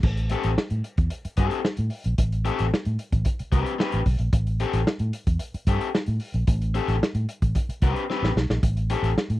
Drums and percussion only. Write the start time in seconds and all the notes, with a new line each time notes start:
0.03 kick, crash
0.17 closed hi-hat
0.30 closed hi-hat
0.43 snare, closed hi-hat
0.58 snare
0.70 closed hi-hat
0.84 closed hi-hat
0.98 kick, closed hi-hat
1.10 closed hi-hat
1.25 closed hi-hat
1.37 kick, closed hi-hat
1.51 closed hi-hat
1.65 snare
1.77 closed hi-hat
1.90 open hi-hat
2.04 closed hi-hat
2.18 kick, closed hi-hat
2.32 closed hi-hat
2.45 closed hi-hat
2.59 snare, closed hi-hat
2.74 snare
2.85 closed hi-hat
2.99 closed hi-hat
3.12 kick, closed hi-hat
3.25 kick, closed hi-hat
3.39 closed hi-hat
3.52 kick, closed hi-hat
3.66 closed hi-hat
3.80 snare
3.92 closed hi-hat
4.06 kick, open hi-hat
4.19 closed hi-hat
4.33 kick, closed hi-hat
4.47 closed hi-hat
4.60 closed hi-hat
4.73 snare, closed hi-hat
4.87 snare
4.99 closed hi-hat
5.13 closed hi-hat
5.27 kick, closed hi-hat
5.39 closed hi-hat
5.54 closed hi-hat
5.67 kick, closed hi-hat
5.81 closed hi-hat
5.95 snare
6.06 closed hi-hat
6.20 open hi-hat
6.34 closed hi-hat
6.47 kick, closed hi-hat
6.62 closed hi-hat
6.75 closed hi-hat
6.88 snare, closed hi-hat
7.03 snare
7.15 closed hi-hat
7.29 closed hi-hat
7.42 kick, closed hi-hat
7.55 kick, closed hi-hat
7.70 closed hi-hat
7.82 kick, closed hi-hat
7.96 closed hi-hat
8.10 snare
8.24 snare
8.37 snare
8.50 snare
8.63 kick, closed hi-hat
8.77 closed hi-hat
8.90 closed hi-hat
9.04 snare, closed hi-hat
9.18 snare
9.30 closed hi-hat